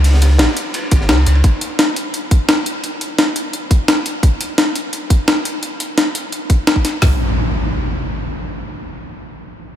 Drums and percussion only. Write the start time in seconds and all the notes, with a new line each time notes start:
0.04 closed hi-hat, open hi-hat
0.14 snare
0.22 snare, closed hi-hat, ride
0.38 snare, closed hi-hat, ride
0.57 closed hi-hat
0.74 closed hi-hat, ride
0.91 kick, closed hi-hat, ride
1.01 snare
1.09 snare, closed hi-hat, ride
1.26 closed hi-hat, ride
1.35 ride
1.44 kick, closed hi-hat
1.61 closed hi-hat
1.79 snare, closed hi-hat
1.96 closed hi-hat
2.14 closed hi-hat
2.31 kick, closed hi-hat
2.49 snare, closed hi-hat
2.66 closed hi-hat
2.84 closed hi-hat
3.01 closed hi-hat
3.19 snare, closed hi-hat
3.36 closed hi-hat
3.53 closed hi-hat
3.71 kick, closed hi-hat
3.88 snare, closed hi-hat
4.06 closed hi-hat
4.23 kick, closed hi-hat
4.41 closed hi-hat
4.58 snare, closed hi-hat
4.75 closed hi-hat
4.93 closed hi-hat
5.10 kick, closed hi-hat
5.28 snare, closed hi-hat
5.45 closed hi-hat
5.63 closed hi-hat
5.80 closed hi-hat
5.98 snare, closed hi-hat
6.15 closed hi-hat
6.32 closed hi-hat
6.50 kick, closed hi-hat
6.67 snare, closed hi-hat
6.76 kick
6.85 snare, closed hi-hat
7.02 kick, snare, open hi-hat